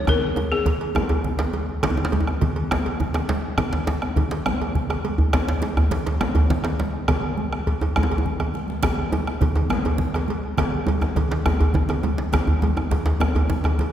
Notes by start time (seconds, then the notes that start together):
0.07 A#4, bombo rim, bombo low, cowbell, djembe slap, djembe tone, low conga, djembe bass
0.22 high conga
0.36 cowbell, djembe tone, high conga
0.52 G#4, bombo rim, djembe slap, djembe tone
0.66 bombo low, cowbell, djembe slap, djembe tone, low conga
0.81 bombo rim, cowbell
0.95 bombo rim, djembe slap, djembe tone, high conga, djembe bass
1.09 cowbell, djembe tone, high conga
1.24 bombo rim, bombo low, djembe slap, high conga, low conga
1.39 bombo rim, cowbell, djembe slap, high conga, djembe tone
1.53 cowbell, high conga
1.69 bombo rim, djembe slap, high conga
1.83 bombo rim, bombo low, cowbell, djembe slap, djembe tone, low conga, djembe bass
1.90 djembe tone
1.97 djembe tone
2.05 djembe slap
2.12 bombo rim, cowbell, djembe tone, high conga
2.20 djembe tone
2.27 bombo rim, djembe slap, djembe tone
2.41 bombo rim, bombo low, cowbell, djembe slap, high conga, low conga
2.56 cowbell, high conga
2.71 bombo rim, djembe slap, djembe tone, high conga, djembe bass
2.86 cowbell
3.00 bombo low, djembe slap, djembe tone, low conga
3.14 bombo rim, cowbell, djembe slap, djembe tone
3.29 cowbell, djembe slap, high conga
3.58 bombo rim, bombo low, cowbell, djembe slap, djembe tone, djembe bass, low conga
3.73 djembe slap
3.87 bombo rim, cowbell, djembe slap, high conga
4.02 bombo rim, djembe slap, djembe tone
4.16 bombo rim, bombo low, cowbell, djembe slap, djembe tone, low conga
4.31 cowbell, djembe slap, high conga
4.46 bombo rim, djembe slap, high conga, djembe tone, djembe bass
4.62 cowbell
4.75 bombo low, djembe slap, low conga
4.90 bombo rim, cowbell, djembe slap, djembe tone
5.05 cowbell, djembe slap, high conga
5.18 bombo rim, djembe bass
5.33 bombo rim, bombo low, cowbell, djembe slap, djembe tone, low conga, djembe bass
5.49 djembe slap
5.62 bombo rim, cowbell, djembe slap, high conga
5.77 bombo rim, djembe slap, djembe tone, djembe bass
5.91 bombo rim, bombo low, cowbell, djembe slap, high conga, low conga
6.06 cowbell, djembe slap, high conga
6.21 bombo rim, djembe slap, high conga, djembe tone, djembe bass
6.35 cowbell, djembe bass
6.50 bombo low, djembe slap, low conga
6.64 bombo rim, cowbell, djembe slap, djembe tone
6.79 djembe slap, high conga
6.94 bombo rim
7.08 bombo rim, bombo low, cowbell, djembe slap, djembe tone, djembe bass, low conga
7.23 djembe slap
7.37 high conga
7.53 bombo rim, djembe slap, djembe tone
7.67 bombo low, cowbell
7.81 bombo rim, cowbell, djembe tone
7.96 bombo rim, djembe slap, high conga, djembe tone, djembe bass
8.03 djembe tone
8.11 cowbell, djembe bass, low conga
8.18 djembe tone
8.26 bombo low, low conga, djembe bass
8.40 bombo rim, cowbell, low conga, djembe bass
8.54 bombo rim, djembe slap, high conga
8.68 djembe slap, high conga
8.83 bombo rim, bombo low, cowbell, djembe slap, djembe tone, low conga, djembe bass
9.12 bombo rim, cowbell, djembe tone, high conga
9.27 bombo rim, djembe slap, djembe tone
9.41 bombo rim, bombo low, cowbell, djembe slap, djembe tone, high conga, low conga
9.55 cowbell, djembe tone, high conga
9.70 bombo rim, djembe slap, high conga, djembe tone, djembe bass
9.85 cowbell, djembe tone
9.98 bombo low, djembe slap, low conga
10.14 bombo rim, cowbell, djembe slap, djembe tone
10.28 cowbell, high conga
10.44 bombo rim
10.58 bombo rim, bombo low, cowbell, djembe slap, djembe tone, low conga, djembe bass
10.87 bombo rim, cowbell, high conga, djembe tone
11.01 bombo rim, djembe slap, djembe tone
11.16 bombo rim, bombo low, cowbell, djembe slap, djembe tone, high conga, low conga
11.31 cowbell, djembe slap, high conga
11.46 bombo rim, djembe slap, djembe tone, high conga, djembe bass
11.61 cowbell, djembe bass
11.74 bombo low, djembe slap, djembe tone, low conga
11.89 bombo rim, cowbell, djembe slap, djembe tone
12.03 cowbell, djembe slap, djembe tone, high conga
12.18 bombo rim, djembe slap
12.32 bombo rim, bombo low, cowbell, djembe slap, djembe tone, djembe bass, low conga
12.47 djembe bass
12.62 bombo rim, cowbell, djembe tone, high conga
12.77 bombo rim, djembe slap, djembe tone
12.91 bombo rim, bombo low, cowbell, djembe slap, djembe tone, high conga, low conga
13.06 cowbell, djembe slap, high conga
13.20 bombo rim, djembe slap, djembe tone, high conga, djembe bass
13.35 cowbell, djembe bass
13.50 bombo low, djembe slap, djembe tone, low conga
13.64 bombo rim, cowbell, djembe slap, djembe tone
13.79 cowbell, djembe slap, djembe tone, high conga